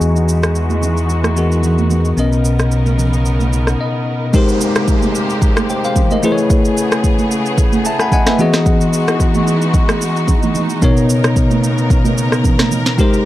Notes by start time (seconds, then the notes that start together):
Already playing: E3 G#3 B3 D#4 F#4 G#4 D#5 G#5
0.01 E2, shaker
0.16 shaker
0.29 shaker
0.43 cross-stick, shaker
0.55 shaker
0.69 high conga, shaker
0.82 low conga, shaker
0.97 shaker
1.09 shaker
1.23 cross-stick, high conga, shaker
1.37 E3 B3 F#4 G#4 A#4, shaker
1.52 shaker
1.63 low conga, shaker
1.78 high conga, shaker
1.90 high conga, low conga, shaker
2.05 shaker
2.17 B1 B2 C#3 B3 C#4 D#4 A#4 D#5, shaker
2.32 shaker
2.45 shaker
2.59 cross-stick, shaker
2.72 shaker
2.86 high conga, shaker
2.98 low conga, shaker
3.13 shaker
3.26 shaker
3.40 high conga, shaker
3.53 shaker
3.67 cross-stick, shaker
3.81 D#5
4.33 C3 G#3 A#3 D#4 G4 A#4 C5, kick, downlifter, shaker
4.49 shaker
4.61 shaker
4.75 cross-stick, shaker
4.88 kick, shaker
5.02 high conga, shaker
5.15 shaker
5.30 shaker
5.42 kick, shaker
5.56 cross-stick, high conga, shaker
5.69 C5 G5, shaker
5.84 C5 F5, shaker
5.95 kick, low conga, shaker
6.11 A#4 D#5, high conga, shaker
6.23 C#3 A3 B3 E4 G#4 B4 C5, high conga, low conga, shaker
6.32 C#5
6.38 shaker
6.50 kick, shaker
6.65 shaker
6.77 shaker
6.92 cross-stick, shaker
7.04 kick, shaker
7.19 high conga, shaker
7.31 shaker
7.46 shaker
7.58 kick, shaker
7.73 high conga, shaker
7.85 E5 A5, shaker
7.99 F#5 G#5 B5, cross-stick, shaker
8.12 D#5 F#5 G#5, kick, low conga, shaker
8.27 B4 E5, cross-stick, snare, high conga, shaker
8.38 E3 G#3 B3 D#4 F#4 G#4 D#5, high conga, low conga, shaker
8.54 cross-stick, snare, shaker
8.66 kick, shaker
8.81 shaker
8.93 shaker
9.08 cross-stick, shaker
9.20 kick, shaker
9.35 high conga, shaker
9.47 shaker
9.62 shaker
9.74 kick, shaker
9.88 cross-stick, high conga, shaker
10.01 shaker
10.16 shaker
10.28 kick, low conga, shaker
10.43 high conga, shaker
10.55 high conga, low conga, shaker
10.70 shaker
10.81 B2 C#3 B3 D#4 A#4 C#5, kick, shaker
10.97 shaker
11.10 shaker
11.24 cross-stick, shaker
11.36 kick, shaker
11.50 high conga, shaker
11.64 shaker
11.78 shaker
11.90 kick, shaker
12.05 high conga, shaker
12.18 shaker
12.32 cross-stick, shaker
12.44 kick, low conga, shaker
12.59 cross-stick, snare, high conga, shaker
12.71 high conga, low conga, shaker
12.86 snare, shaker
12.98 C3 G#3 D#4 G4 A#4 C5, kick, shaker
13.14 shaker